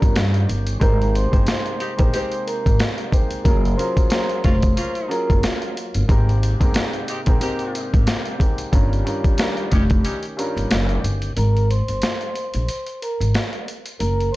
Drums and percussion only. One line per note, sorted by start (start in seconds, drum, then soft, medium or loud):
0.02 kick loud
0.02 closed hi-hat soft
0.16 snare loud
0.16 closed hi-hat loud
0.34 closed hi-hat soft
0.49 closed hi-hat medium
0.67 closed hi-hat medium
0.81 kick loud
0.81 closed hi-hat loud
1.02 closed hi-hat soft
1.15 closed hi-hat medium
1.33 kick medium
1.33 closed hi-hat medium
1.47 snare loud
1.47 closed hi-hat loud
1.66 closed hi-hat soft
1.80 closed hi-hat medium
1.99 kick loud
1.99 closed hi-hat medium
2.14 closed hi-hat loud
2.32 closed hi-hat soft
2.48 closed hi-hat medium
2.66 kick medium
2.66 closed hi-hat medium
2.79 snare loud
2.79 closed hi-hat loud
2.98 closed hi-hat soft
3.12 kick medium
3.12 closed hi-hat medium
3.31 closed hi-hat medium
3.45 kick loud
3.45 closed hi-hat loud
3.65 closed hi-hat soft
3.79 closed hi-hat medium
3.97 kick medium
3.97 closed hi-hat medium
4.10 snare loud
4.10 closed hi-hat loud
4.29 closed hi-hat soft
4.44 kick loud
4.44 snare soft
4.44 closed hi-hat medium
4.62 kick medium
4.62 closed hi-hat medium
4.77 closed hi-hat loud
4.95 closed hi-hat soft
5.11 closed hi-hat medium
5.30 kick loud
5.30 closed hi-hat medium
5.43 snare loud
5.43 closed hi-hat loud
5.62 closed hi-hat soft
5.77 closed hi-hat medium
5.94 closed hi-hat medium
6.09 kick loud
6.09 closed hi-hat loud
6.29 closed hi-hat soft
6.43 closed hi-hat medium
6.61 kick loud
6.61 closed hi-hat medium
6.74 snare loud
6.74 closed hi-hat loud
6.93 closed hi-hat soft
7.08 closed hi-hat medium
7.26 kick loud
7.26 closed hi-hat medium
7.41 closed hi-hat loud
7.59 closed hi-hat soft
7.75 closed hi-hat medium
7.94 kick loud
7.94 closed hi-hat soft
8.07 snare loud
8.07 closed hi-hat loud
8.25 closed hi-hat soft
8.40 kick medium
8.40 closed hi-hat medium
8.58 closed hi-hat medium
8.73 kick loud
8.73 closed hi-hat loud
8.93 closed hi-hat soft
9.07 closed hi-hat medium
9.24 kick medium
9.24 closed hi-hat medium
9.38 snare loud
9.38 closed hi-hat loud
9.57 closed hi-hat soft
9.72 kick medium
9.72 snare soft
9.72 closed hi-hat medium
9.90 kick loud
9.90 closed hi-hat medium
10.05 closed hi-hat loud
10.23 closed hi-hat soft
10.39 closed hi-hat medium
10.58 closed hi-hat medium
10.71 snare loud
10.71 closed hi-hat loud
10.89 closed hi-hat soft
11.04 closed hi-hat medium
11.22 closed hi-hat medium
11.37 closed hi-hat loud
11.57 closed hi-hat soft
11.71 closed hi-hat medium
11.88 closed hi-hat medium
12.02 snare loud
12.02 closed hi-hat loud
12.21 closed hi-hat soft
12.36 closed hi-hat medium
12.54 closed hi-hat medium
12.68 closed hi-hat loud
12.86 closed hi-hat soft
13.02 closed hi-hat medium
13.21 closed hi-hat medium
13.34 snare loud
13.34 closed hi-hat loud
13.53 closed hi-hat soft
13.68 closed hi-hat medium
13.86 closed hi-hat medium
14.00 closed hi-hat loud
14.20 closed hi-hat soft